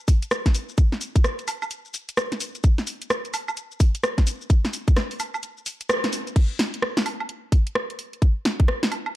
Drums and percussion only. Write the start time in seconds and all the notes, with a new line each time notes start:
0.08 kick, open hi-hat, shaker
0.23 closed hi-hat, shaker
0.31 cross-stick, shaker
0.46 kick, snare, closed hi-hat, shaker
0.55 open hi-hat, shaker
0.69 shaker
0.78 kick, closed hi-hat, shaker
0.92 snare, shaker
1.01 open hi-hat, shaker
1.16 kick, closed hi-hat, shaker
1.24 cross-stick, shaker
1.39 closed hi-hat, shaker
1.48 open hi-hat, high woodblock, shaker
1.62 high woodblock, shaker
1.71 closed hi-hat, shaker
1.85 shaker
1.94 open hi-hat, shaker
2.09 closed hi-hat, shaker
2.17 cross-stick, shaker
2.32 snare, closed hi-hat, shaker
2.40 open hi-hat, shaker
2.55 closed hi-hat, shaker
2.64 kick, closed hi-hat, shaker
2.78 snare, shaker
2.87 open hi-hat, shaker
3.02 closed hi-hat, shaker
3.10 cross-stick, shaker
3.25 closed hi-hat, shaker
3.34 open hi-hat, high woodblock, shaker
3.48 high woodblock, shaker
3.57 closed hi-hat, shaker
3.72 shaker
3.80 kick, open hi-hat, shaker
3.95 closed hi-hat, shaker
4.04 cross-stick, shaker
4.18 kick, snare, closed hi-hat, shaker
4.27 open hi-hat, shaker
4.41 shaker
4.50 kick, closed hi-hat, shaker
4.65 snare, shaker
4.73 open hi-hat, shaker
4.88 kick, closed hi-hat, shaker
4.96 cross-stick, snare, shaker
5.11 open hi-hat, shaker
5.20 open hi-hat, high woodblock, shaker
5.34 high woodblock, shaker
5.43 closed hi-hat, shaker
5.57 shaker
5.66 open hi-hat, shaker
5.81 closed hi-hat, shaker
5.89 cross-stick, shaker
6.04 snare, closed hi-hat, shaker
6.13 open hi-hat, shaker
6.27 closed hi-hat, shaker
6.36 kick, closed hi-hat, crash
6.59 snare, open hi-hat
6.74 closed hi-hat
6.82 cross-stick
6.97 snare, closed hi-hat
7.06 open hi-hat, high woodblock
7.20 high woodblock
7.29 closed hi-hat
7.52 kick, open hi-hat
7.67 closed hi-hat
7.75 cross-stick
7.90 closed hi-hat
7.99 open hi-hat
8.13 closed hi-hat
8.22 kick, closed hi-hat
8.45 snare, open hi-hat
8.60 kick, closed hi-hat
8.68 cross-stick
8.83 snare, closed hi-hat
8.92 open hi-hat, high woodblock
9.06 high woodblock